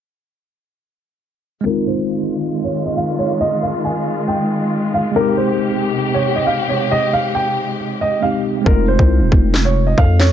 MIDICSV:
0, 0, Header, 1, 6, 480
1, 0, Start_track
1, 0, Tempo, 437956
1, 1814, Time_signature, 4, 2, 24, 8
1, 11315, End_track
2, 0, Start_track
2, 0, Title_t, "Grand piano"
2, 0, Program_c, 0, 0
2, 1821, Note_on_c, 0, 70, 94
2, 2025, Note_off_c, 0, 70, 0
2, 2054, Note_on_c, 0, 72, 78
2, 2851, Note_off_c, 0, 72, 0
2, 2899, Note_on_c, 0, 73, 70
2, 3104, Note_off_c, 0, 73, 0
2, 3133, Note_on_c, 0, 75, 69
2, 3237, Note_off_c, 0, 75, 0
2, 3256, Note_on_c, 0, 77, 88
2, 3462, Note_off_c, 0, 77, 0
2, 3495, Note_on_c, 0, 73, 82
2, 3702, Note_off_c, 0, 73, 0
2, 3735, Note_on_c, 0, 75, 108
2, 3941, Note_off_c, 0, 75, 0
2, 3978, Note_on_c, 0, 77, 73
2, 4183, Note_off_c, 0, 77, 0
2, 4217, Note_on_c, 0, 80, 75
2, 4667, Note_off_c, 0, 80, 0
2, 4691, Note_on_c, 0, 79, 73
2, 5369, Note_off_c, 0, 79, 0
2, 5416, Note_on_c, 0, 77, 74
2, 5622, Note_off_c, 0, 77, 0
2, 5656, Note_on_c, 0, 70, 104
2, 5862, Note_off_c, 0, 70, 0
2, 5890, Note_on_c, 0, 72, 80
2, 6688, Note_off_c, 0, 72, 0
2, 6733, Note_on_c, 0, 73, 77
2, 6941, Note_off_c, 0, 73, 0
2, 6969, Note_on_c, 0, 75, 73
2, 7075, Note_off_c, 0, 75, 0
2, 7088, Note_on_c, 0, 77, 80
2, 7298, Note_off_c, 0, 77, 0
2, 7335, Note_on_c, 0, 73, 75
2, 7541, Note_off_c, 0, 73, 0
2, 7579, Note_on_c, 0, 75, 94
2, 7784, Note_off_c, 0, 75, 0
2, 7818, Note_on_c, 0, 77, 86
2, 8023, Note_off_c, 0, 77, 0
2, 8054, Note_on_c, 0, 79, 84
2, 8505, Note_off_c, 0, 79, 0
2, 8783, Note_on_c, 0, 75, 80
2, 8986, Note_off_c, 0, 75, 0
2, 9015, Note_on_c, 0, 77, 75
2, 9222, Note_off_c, 0, 77, 0
2, 9502, Note_on_c, 0, 70, 99
2, 9706, Note_off_c, 0, 70, 0
2, 9735, Note_on_c, 0, 72, 79
2, 10531, Note_off_c, 0, 72, 0
2, 10579, Note_on_c, 0, 73, 79
2, 10784, Note_off_c, 0, 73, 0
2, 10814, Note_on_c, 0, 75, 71
2, 10918, Note_off_c, 0, 75, 0
2, 10937, Note_on_c, 0, 77, 91
2, 11142, Note_off_c, 0, 77, 0
2, 11178, Note_on_c, 0, 73, 87
2, 11315, Note_off_c, 0, 73, 0
2, 11315, End_track
3, 0, Start_track
3, 0, Title_t, "Tine electric piano"
3, 0, Program_c, 1, 4
3, 1764, Note_on_c, 1, 56, 67
3, 1797, Note_on_c, 1, 60, 66
3, 1829, Note_on_c, 1, 63, 61
3, 1862, Note_on_c, 1, 65, 76
3, 1991, Control_c, 1, 64, 127
3, 5585, Note_off_c, 1, 56, 0
3, 5602, Note_off_c, 1, 60, 0
3, 5608, Note_on_c, 1, 56, 71
3, 5618, Note_off_c, 1, 63, 0
3, 5634, Note_off_c, 1, 65, 0
3, 5641, Note_on_c, 1, 60, 62
3, 5669, Control_c, 1, 64, 0
3, 5674, Note_on_c, 1, 63, 62
3, 5707, Note_on_c, 1, 67, 82
3, 5866, Control_c, 1, 64, 127
3, 8948, Note_off_c, 1, 56, 0
3, 8964, Note_off_c, 1, 60, 0
3, 8980, Note_off_c, 1, 63, 0
3, 8993, Note_on_c, 1, 56, 49
3, 8997, Note_off_c, 1, 67, 0
3, 9009, Note_on_c, 1, 60, 48
3, 9025, Note_on_c, 1, 63, 47
3, 9042, Note_on_c, 1, 67, 56
3, 9428, Note_off_c, 1, 56, 0
3, 9441, Note_on_c, 1, 56, 70
3, 9460, Note_off_c, 1, 60, 0
3, 9473, Note_on_c, 1, 60, 67
3, 9493, Note_off_c, 1, 63, 0
3, 9506, Note_on_c, 1, 63, 61
3, 9507, Control_c, 1, 64, 0
3, 9508, Note_off_c, 1, 67, 0
3, 9539, Note_on_c, 1, 65, 75
3, 9702, Control_c, 1, 64, 127
3, 11315, Note_off_c, 1, 56, 0
3, 11315, Note_off_c, 1, 60, 0
3, 11315, Note_off_c, 1, 63, 0
3, 11315, Note_off_c, 1, 65, 0
3, 11315, End_track
4, 0, Start_track
4, 0, Title_t, "String section"
4, 0, Program_c, 2, 48
4, 1815, Note_on_c, 2, 56, 71
4, 1815, Note_on_c, 2, 65, 85
4, 1816, Note_on_c, 2, 51, 80
4, 5616, Note_off_c, 2, 65, 0
4, 5617, Note_off_c, 2, 51, 0
4, 5655, Note_on_c, 2, 67, 88
4, 5656, Note_on_c, 2, 48, 78
4, 9451, Note_off_c, 2, 56, 0
4, 9456, Note_off_c, 2, 67, 0
4, 9457, Note_off_c, 2, 48, 0
4, 11315, End_track
5, 0, Start_track
5, 0, Title_t, "808-style bass"
5, 0, Program_c, 3, 38
5, 9494, Note_on_c, 3, 29, 114
5, 9840, Note_off_c, 3, 29, 0
5, 9853, Note_on_c, 3, 36, 109
5, 10094, Note_on_c, 3, 27, 99
5, 10110, Note_off_c, 3, 36, 0
5, 10208, Note_off_c, 3, 27, 0
5, 10214, Note_on_c, 3, 29, 111
5, 10905, Note_off_c, 3, 29, 0
5, 10934, Note_on_c, 3, 41, 108
5, 11315, Note_off_c, 3, 41, 0
5, 11315, End_track
6, 0, Start_track
6, 0, Title_t, "Drums"
6, 9494, Note_on_c, 9, 36, 117
6, 9604, Note_off_c, 9, 36, 0
6, 9854, Note_on_c, 9, 36, 93
6, 9963, Note_off_c, 9, 36, 0
6, 10214, Note_on_c, 9, 36, 99
6, 10323, Note_off_c, 9, 36, 0
6, 10454, Note_on_c, 9, 38, 112
6, 10465, Note_on_c, 9, 39, 89
6, 10564, Note_off_c, 9, 38, 0
6, 10575, Note_off_c, 9, 39, 0
6, 10934, Note_on_c, 9, 36, 92
6, 11044, Note_off_c, 9, 36, 0
6, 11174, Note_on_c, 9, 38, 102
6, 11186, Note_on_c, 9, 39, 82
6, 11284, Note_off_c, 9, 38, 0
6, 11295, Note_off_c, 9, 39, 0
6, 11315, End_track
0, 0, End_of_file